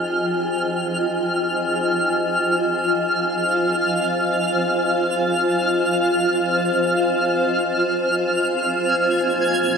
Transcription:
0.00 9.78 F4 medium
0.00 9.78 C5 medium
0.00 8.70 D#5 medium
0.00 2.51 G5 medium
0.00 9.78 G#5 medium
0.00 8.72 F6 medium
2.20 9.78 F5 medium
8.69 9.78 A#3 medium
8.74 9.78 G#6 medium
9.44 9.78 G#4 medium

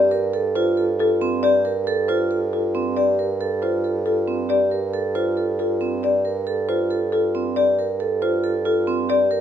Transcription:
0.00 9.41 G2 medium
0.00 0.18 G4 medium
0.00 0.18 D5 loud
0.11 0.40 A#4 medium
0.33 0.62 A4 medium
0.55 0.84 F4 medium
0.55 0.84 C5 medium
0.77 1.06 A4 medium
1.00 1.28 F4 medium
1.00 1.28 A4 medium
1.22 1.50 C4 medium
1.43 1.72 G4 medium
1.43 1.71 D5 medium
1.65 1.93 A#4 medium
1.87 2.15 A4 medium
2.08 2.37 F4 medium
2.08 2.37 C5 medium
2.31 2.59 A4 medium
2.53 2.81 F4 medium
2.53 2.81 A4 medium
2.75 3.03 C4 medium
2.97 3.25 G4 medium
2.97 3.25 D5 medium
3.19 3.47 A#4 medium
3.41 3.69 A4 medium
3.62 3.90 F4 medium
3.62 3.91 C5 medium
3.84 4.12 A4 medium
4.06 4.34 F4 medium
4.06 4.34 A4 medium
4.28 4.56 C4 medium
4.49 4.78 G4 medium
4.49 4.78 D5 medium
4.71 5.00 A#4 medium
4.94 5.22 A4 medium
5.15 5.44 F4 medium
5.15 5.44 C5 medium
5.37 5.65 A4 medium
5.59 5.87 F4 medium
5.59 5.88 A4 medium
5.81 6.09 C4 medium
6.03 6.31 G4 medium
6.03 6.32 D5 medium
6.25 6.53 A#4 medium
6.47 6.75 A4 medium
6.69 6.97 F4 medium
6.69 6.97 C5 medium
6.91 7.19 A4 medium
7.12 7.41 F4 medium
7.12 7.41 A4 medium
7.35 7.63 C4 medium
7.56 7.85 G4 medium
7.56 7.85 D5 medium
7.79 8.07 A#4 medium
8.00 8.28 A4 medium
8.22 8.50 F4 medium
8.22 8.50 C5 medium
8.44 8.72 A4 medium
8.65 8.94 F4 medium
8.65 8.94 A4 medium
8.87 9.16 C4 medium
9.09 9.38 G4 medium
9.09 9.38 D5 medium
9.31 9.41 A#4 medium

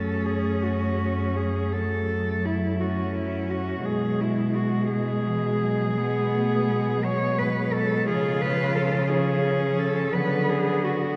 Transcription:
0.00 3.81 F#2 soft
0.00 1.75 A3 soft
0.00 1.75 C#4 soft
0.00 0.27 A4 soft
0.26 0.64 G#4 soft
0.63 1.38 F#4 soft
1.36 1.74 G#4 soft
1.73 3.85 F#3 soft
1.73 2.83 A3 soft
1.73 2.47 A4 soft
2.45 2.82 E4 soft
2.80 3.85 C#4 soft
2.80 3.15 F#4 soft
3.15 3.51 E4 soft
3.49 3.87 F#4 soft
3.84 8.08 B2 soft
3.84 6.00 G#3 soft
3.84 4.90 G#3 soft
3.84 4.22 G#4 soft
4.20 4.57 E4 soft
4.55 4.91 F#4 soft
4.91 5.29 G#3 soft
4.91 7.06 G#4 medium
5.27 5.63 E3 soft
5.61 5.99 F#3 soft
5.97 6.34 G#3 soft
5.97 7.03 B3 soft
6.33 6.70 A3 soft
6.68 7.02 G#3 soft
7.03 8.09 F#3 soft
7.03 8.09 G#3 soft
7.03 7.40 C#5 medium
7.38 7.74 B4 medium
7.73 8.07 A4 medium
8.07 10.14 C#3 soft
8.07 9.11 F3 soft
8.07 9.11 F4 medium
8.07 8.43 G#4 medium
8.41 8.76 B4 medium
8.75 9.08 A4 medium
9.09 10.13 F3 soft
9.09 10.17 C#4 medium
9.09 9.80 G#4 medium
9.79 10.14 A4 medium
10.13 11.16 D3 soft
10.13 11.16 F#3 soft
10.13 11.16 B3 medium
10.13 10.51 B4 medium
10.49 10.85 G#4 medium
10.84 11.16 F#4 soft

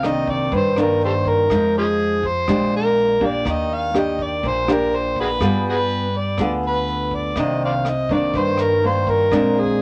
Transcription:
0.00 0.48 C2 medium
0.00 0.50 C3 soft
0.00 0.73 D#3 medium
0.00 0.73 A#3 soft
0.00 cross-stick medium
0.00 closed hi-hat soft
0.04 0.73 D4 medium
0.04 0.32 D#5 medium
0.27 0.53 D5 medium
0.27 kick soft
0.27 closed hi-hat soft
0.52 1.47 G2 soft
0.52 1.46 G2 medium
0.52 0.82 C5 medium
0.52 kick medium
0.52 closed hi-hat soft
0.76 1.46 D#3 medium
0.76 1.46 A#3 medium
0.76 1.46 D4 soft
0.76 cross-stick medium
0.80 1.03 A#4 medium
1.01 1.12 G4 medium
1.01 1.13 A4 medium
1.01 1.31 C5 medium
1.01 closed hi-hat soft
1.25 kick soft
1.25 closed hi-hat soft
1.29 1.76 A#4 medium
1.50 2.44 F2 medium
1.50 2.46 F3 soft
1.50 2.16 G#3 soft
1.50 2.16 D#4 medium
1.50 kick medium
1.50 cross-stick medium
1.50 closed hi-hat soft
1.75 1.86 C#4 medium
1.75 1.85 F4 medium
1.75 2.28 G#4 medium
1.75 closed hi-hat soft
1.99 closed hi-hat soft
2.23 2.74 C5 medium
2.23 kick soft
2.23 closed hi-hat soft
2.48 3.42 A#1 medium
2.48 3.43 A#2 soft
2.48 3.17 G#3 soft
2.48 3.17 D4 soft
2.48 3.17 G4 soft
2.48 kick soft
2.48 cross-stick soft
2.48 closed hi-hat soft
2.72 closed hi-hat soft
2.76 3.28 A#4 medium
2.97 closed hi-hat soft
3.20 3.90 A#3 soft
3.20 3.90 D4 soft
3.20 3.90 G4 soft
3.20 kick medium
3.20 closed hi-hat soft
3.26 3.52 D5 medium
3.45 4.39 D#2 medium
3.45 4.40 D#3 soft
3.45 kick medium
3.45 cross-stick medium
3.45 closed hi-hat soft
3.51 3.76 D#5 medium
3.70 closed hi-hat soft
3.74 4.00 F5 medium
3.94 4.63 A#3 medium
3.94 4.64 D4 soft
3.94 4.64 G4 medium
3.94 cross-stick soft
3.94 closed hi-hat soft
3.98 4.24 D#5 medium
4.19 4.49 D5 medium
4.19 kick soft
4.19 closed hi-hat soft
4.43 5.37 A#1 medium
4.43 5.38 A#2 soft
4.43 kick medium
4.43 closed hi-hat soft
4.48 4.74 C5 medium
4.68 5.37 A#3 soft
4.68 5.37 D4 medium
4.68 5.37 G4 medium
4.68 cross-stick medium
4.72 4.98 A#4 medium
4.92 5.18 C5 medium
4.92 closed hi-hat soft
5.16 kick soft
5.16 closed hi-hat soft
5.20 5.29 F#4 medium
5.20 5.28 G#4 medium
5.20 5.64 B4 medium
5.40 6.34 G2 medium
5.40 6.36 G3 soft
5.40 6.06 B3 soft
5.40 6.06 F4 soft
5.40 6.07 G#4 medium
5.40 kick medium
5.40 cross-stick medium
5.40 closed hi-hat soft
5.65 closed hi-hat soft
5.69 5.76 F#4 medium
5.69 5.77 G#4 medium
5.69 6.19 B4 medium
5.89 closed hi-hat soft
6.13 closed hi-hat soft
6.17 6.53 D5 medium
6.38 7.32 D2 medium
6.38 7.34 D3 soft
6.38 7.33 B3 soft
6.38 7.33 F4 soft
6.38 7.33 G#4 soft
6.38 kick medium
6.38 cross-stick soft
6.38 closed hi-hat soft
6.62 closed hi-hat soft
6.67 7.17 B4 medium
6.87 closed hi-hat soft
7.11 kick soft
7.11 closed hi-hat soft
7.15 7.42 D5 medium
7.36 8.30 C2 medium
7.36 8.32 C3 soft
7.36 7.85 D#3 medium
7.36 7.85 A#3 soft
7.36 7.85 D4 medium
7.36 kick medium
7.36 cross-stick soft
7.36 closed hi-hat soft
7.41 7.63 D#5 medium
7.61 closed hi-hat soft
7.65 7.74 C5 soft
7.65 7.72 D5 soft
7.65 7.91 F5 medium
7.85 cross-stick soft
7.85 closed hi-hat soft
7.89 8.14 D#5 medium
8.09 8.79 D#3 soft
8.09 8.79 A#3 soft
8.09 8.79 D4 medium
8.09 8.39 D5 medium
8.09 kick soft
8.09 closed hi-hat soft
8.33 9.27 G2 medium
8.33 9.30 G2 soft
8.33 kick medium
8.33 closed hi-hat soft
8.38 8.63 C5 medium
8.57 cross-stick soft
8.62 8.88 A#4 medium
8.82 9.28 D#3 soft
8.82 9.28 A#3 medium
8.82 9.28 D4 soft
8.82 9.12 C5 medium
8.82 closed hi-hat soft
9.07 9.61 A#4 medium
9.07 kick soft
9.07 closed hi-hat soft
9.31 9.82 A#1 medium
9.31 9.82 A#2 medium
9.31 9.80 G#3 soft
9.31 9.80 C4 soft
9.31 9.80 D4 medium
9.31 kick medium
9.31 cross-stick medium
9.31 closed hi-hat soft
9.56 9.82 G#4 medium
9.56 closed hi-hat soft

